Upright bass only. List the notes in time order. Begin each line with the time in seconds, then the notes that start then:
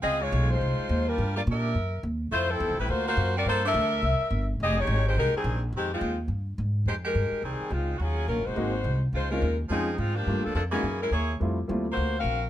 0.03 C#2
0.32 B1
0.61 C2
0.79 muted upright bass stroke
0.89 D#2
1.18 G2
1.47 A#2
1.75 F#2
2.03 D#2
2.31 F2
2.60 E2
2.70 C2
2.79 A1
2.88 D2
3.17 F#2
3.46 G2
3.74 D2
4.02 C2
4.20 muted upright bass stroke
4.30 G1
4.60 F1
4.87 G#1
5.16 C2
5.33 muted upright bass stroke
5.44 A#1
5.72 F2
6.01 D#2
6.28 G2
6.58 G#2
6.86 F2
7.15 G2
7.31 muted upright bass stroke
7.42 C2
7.60 muted upright bass stroke
7.71 C#2
7.99 D#2
8.28 A#1
8.38 F#1
8.47 D#1
8.56 G#1
8.84 C2
9.13 C#2
9.42 D#2
9.70 F2
9.98 G#2
10.27 G2
10.37 F2
10.45 D2
10.55 F2
10.83 F#2
11.11 D#2
11.41 F2
11.69 D#2
11.97 D2
12.24 A#1